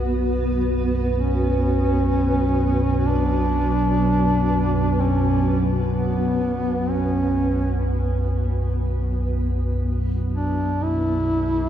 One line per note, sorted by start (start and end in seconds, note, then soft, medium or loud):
0.00 11.69 B1 medium
0.00 11.69 F#2 medium
0.00 0.20 B3 medium
0.00 11.69 B3 medium
0.00 10.98 F#4 medium
0.00 11.63 B4 medium
1.16 3.10 C#4 medium
3.09 5.02 D4 loud
5.00 5.69 C#4 medium
5.94 6.91 B3 medium
6.90 7.88 C#4 medium
9.57 11.69 E4 medium
9.86 11.69 E5 medium
10.32 10.84 D4 medium
10.49 11.69 G#4 medium
10.82 11.69 E4 loud